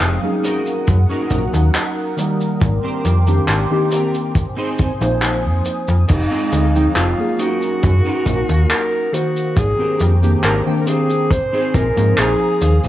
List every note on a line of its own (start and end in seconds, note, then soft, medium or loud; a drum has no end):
0.00 0.19 F1 loud
0.00 0.17 F3 medium
0.00 0.17 G#3 medium
0.00 0.43 G#3 medium
0.00 0.18 C4 medium
0.00 0.18 D#4 medium
0.00 0.43 F5 medium
0.00 0.18 G5 medium
0.00 2.57 D#6 medium
0.00 clap loud
0.00 closed hi-hat medium
0.00 cabasa soft
0.22 1.25 F#3 medium
0.22 1.26 A#3 medium
0.22 1.26 C#4 medium
0.22 1.26 D#4 medium
0.22 1.27 G#4 medium
0.43 0.96 C#4 medium
0.43 0.97 D#4 medium
0.43 0.97 F#4 medium
0.43 4.32 A#4 medium
0.43 0.97 A#4 loud
0.43 2.59 F#5 medium
0.43 closed hi-hat medium
0.43 cabasa medium
0.66 cabasa medium
0.87 1.06 F#2 loud
0.87 kick loud
0.87 closed hi-hat medium
0.87 cabasa medium
1.09 1.42 C#4 loud
1.09 1.42 D#4 loud
1.09 1.43 F#4 loud
1.09 1.43 A#4 loud
1.30 1.49 A#1 medium
1.30 2.12 F#3 medium
1.30 2.13 A#3 medium
1.30 2.13 C#4 medium
1.30 2.13 D#4 medium
1.30 2.13 F#4 medium
1.30 kick medium
1.30 closed hi-hat medium
1.30 cabasa medium
1.53 1.70 D#2 loud
1.53 closed hi-hat medium
1.53 cabasa medium
1.74 muted clean electric guitar stroke medium
1.74 clap loud
1.74 closed hi-hat medium
1.74 cabasa soft
1.96 muted clean electric guitar stroke soft
2.16 3.21 D#3 medium
2.16 3.23 G3 medium
2.16 3.22 A#3 medium
2.16 muted clean electric guitar stroke soft
2.16 closed hi-hat medium
2.16 cabasa medium
2.41 cabasa medium
2.60 2.79 G#1 loud
2.60 4.34 G5 medium
2.60 4.34 C6 medium
2.60 4.34 D6 medium
2.60 muted clean electric guitar stroke loud
2.60 kick loud
2.60 closed hi-hat medium
2.60 cabasa soft
2.83 3.16 C4 medium
2.83 3.16 D4 medium
2.83 3.16 G4 medium
2.83 3.17 C5 medium
3.05 3.40 F2 loud
3.05 closed hi-hat medium
3.05 cabasa medium
3.27 3.65 D#3 medium
3.27 3.65 A#3 medium
3.27 3.66 C4 medium
3.27 3.66 D4 medium
3.27 3.66 G4 medium
3.27 cabasa medium
3.48 3.66 G#1 medium
3.48 clap loud
3.48 closed hi-hat medium
3.48 cabasa soft
3.70 4.32 D#3 medium
3.70 4.33 A#3 medium
3.70 4.33 C4 medium
3.70 4.33 D4 medium
3.70 4.33 G4 loud
3.91 4.14 C4 medium
3.91 4.14 D4 medium
3.91 4.14 G4 medium
3.91 4.15 A#4 loud
3.91 closed hi-hat medium
3.91 cabasa medium
4.15 cabasa medium
4.35 6.08 C5 medium
4.35 6.08 G#5 medium
4.35 9.53 D#6 medium
4.35 muted clean electric guitar stroke soft
4.35 kick loud
4.35 closed hi-hat medium
4.35 cabasa soft
4.57 4.89 C4 loud
4.57 4.90 D#4 loud
4.57 4.90 G#4 loud
4.57 4.90 C5 loud
4.79 kick loud
4.79 closed hi-hat medium
4.79 cabasa medium
5.00 5.46 A#1 loud
5.00 6.06 F3 medium
5.00 6.06 A#3 medium
5.00 6.07 C4 medium
5.00 6.07 D#4 medium
5.00 6.07 C5 medium
5.00 closed hi-hat medium
5.00 cabasa soft
5.21 muted clean electric guitar stroke medium
5.21 clap loud
5.21 closed hi-hat medium
5.21 cabasa soft
5.44 5.62 F2 loud
5.44 muted clean electric guitar stroke soft
5.64 muted clean electric guitar stroke soft
5.64 closed hi-hat medium
5.64 cabasa medium
5.88 6.05 F2 loud
5.88 cabasa medium
6.08 6.28 F1 loud
6.08 7.38 G#3 medium
6.08 6.98 D#4 loud
6.08 7.38 F5 medium
6.08 muted clean electric guitar stroke loud
6.08 kick loud
6.08 closed hi-hat medium
6.08 crash medium
6.08 cabasa soft
6.31 6.63 C4 medium
6.31 6.64 D#4 medium
6.31 6.64 F4 medium
6.31 6.64 G#4 medium
6.52 6.88 D2 loud
6.52 closed hi-hat medium
6.52 cabasa medium
6.74 7.13 F3 medium
6.74 7.13 G#3 medium
6.74 7.13 C4 medium
6.74 7.14 D#4 medium
6.74 7.14 G5 medium
6.74 cabasa medium
6.96 7.14 F1 medium
6.96 7.41 F4 loud
6.96 clap loud
6.96 closed hi-hat medium
6.96 cabasa soft
7.17 8.21 F#3 medium
7.17 8.21 A#3 medium
7.17 8.21 C#4 medium
7.17 8.22 D#4 medium
7.17 8.22 G#4 medium
7.39 7.92 C#4 loud
7.39 7.92 D#4 medium
7.39 8.71 F#4 loud
7.39 7.92 F#4 medium
7.39 9.55 A#4 medium
7.39 7.93 A#4 loud
7.39 9.55 F#5 medium
7.39 closed hi-hat medium
7.39 cabasa medium
7.62 cabasa medium
7.83 8.01 F#2 loud
7.83 kick loud
7.83 closed hi-hat loud
7.83 cabasa soft
8.05 8.37 C#4 loud
8.05 8.38 D#4 loud
8.05 8.38 F#4 loud
8.05 8.38 A#4 loud
8.26 8.44 A#1 medium
8.26 9.08 F#3 medium
8.26 9.08 A#3 medium
8.26 9.08 C#4 medium
8.26 9.09 D#4 medium
8.26 9.09 F#4 medium
8.26 kick medium
8.26 closed hi-hat medium
8.26 cabasa medium
8.49 8.66 D#2 medium
8.49 closed hi-hat medium
8.49 cabasa medium
8.69 9.15 A#4 medium
8.69 muted clean electric guitar stroke medium
8.69 clap loud
8.69 closed hi-hat medium
8.69 cabasa soft
8.92 muted clean electric guitar stroke soft
9.12 10.17 D#3 medium
9.12 10.17 A#3 medium
9.12 9.59 F#4 medium
9.12 10.18 C5 medium
9.12 muted clean electric guitar stroke soft
9.12 closed hi-hat medium
9.12 cabasa medium
9.37 cabasa medium
9.56 9.75 G#1 loud
9.56 10.18 G#4 loud
9.56 12.88 C5 medium
9.56 11.29 G5 medium
9.56 11.29 A#5 medium
9.56 11.29 D6 medium
9.56 muted clean electric guitar stroke loud
9.56 kick loud
9.56 closed hi-hat medium
9.56 cabasa soft
9.79 10.11 C4 medium
9.79 10.12 D4 medium
9.79 10.12 G4 medium
9.79 10.12 A#4 medium
10.00 10.36 F2 loud
10.00 closed hi-hat medium
10.00 cabasa medium
10.22 10.61 D#3 medium
10.22 10.61 A#3 medium
10.22 10.61 C4 medium
10.22 10.61 D4 medium
10.22 10.62 G4 medium
10.22 cabasa medium
10.44 10.62 G#1 medium
10.44 10.60 A#4 loud
10.44 clap loud
10.44 closed hi-hat medium
10.44 cabasa soft
10.66 11.28 D#3 loud
10.66 11.28 A#3 medium
10.66 11.28 C4 medium
10.66 11.29 D4 medium
10.66 11.29 G5 loud
10.81 10.89 A#4 medium
10.86 11.10 C4 medium
10.86 11.10 D4 medium
10.86 11.10 G4 medium
10.86 11.33 G#4 medium
10.86 11.10 C5 loud
10.86 closed hi-hat medium
10.86 cabasa medium
11.10 cabasa medium
11.30 11.76 C5 loud
11.30 12.88 G#5 medium
11.30 12.88 D#6 medium
11.30 muted clean electric guitar stroke soft
11.30 kick loud
11.30 closed hi-hat medium
11.30 cabasa soft
11.53 11.85 C4 loud
11.53 11.86 D#4 loud
11.53 11.86 G#4 loud
11.53 11.86 C5 loud
11.74 11.93 A#1 loud
11.74 12.20 A#4 loud
11.74 12.15 G#5 medium
11.74 kick loud
11.74 closed hi-hat medium
11.74 cabasa medium
11.95 12.14 G#2 medium
11.95 12.88 F3 medium
11.95 12.88 A#3 medium
11.95 12.88 C4 medium
11.95 12.88 D#4 medium
11.95 12.88 C5 medium
11.95 closed hi-hat soft
11.95 cabasa medium
12.17 12.36 A#1 loud
12.17 12.84 G#4 loud
12.17 12.58 A#5 medium
12.17 muted clean electric guitar stroke medium
12.17 clap loud
12.17 closed hi-hat loud
12.17 cabasa soft
12.40 muted clean electric guitar stroke soft
12.61 12.80 D#2 medium
12.61 12.88 F5 medium
12.61 muted clean electric guitar stroke soft
12.61 closed hi-hat medium
12.61 cabasa medium
12.84 12.88 A#1 medium
12.84 cabasa medium